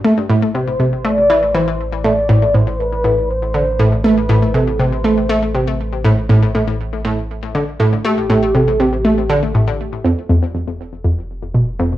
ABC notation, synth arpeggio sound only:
X:1
M:4/4
L:1/8
Q:1/4=120
K:Am
V:1 name="Synth arpeggio sound" clef=bass
A, A,, C, C, A, E, E, z | A,, A,, A,, z A,, z D, A,, | A, A,, C, C, A, A, C, z | A,, A,, A,, z A,, z D, A,, |
A, A,, C, C, A, D, A,, z | F,, F,, F,, z F,, z B,, F,, |]